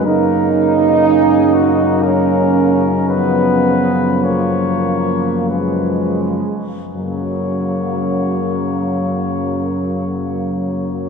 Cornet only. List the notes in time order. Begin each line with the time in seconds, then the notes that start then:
0.05 A#4
1.04 G#4
1.53 F#4
2.03 A#4
3.09 B4
4.24 C#5
5.50 B4
6.94 C#5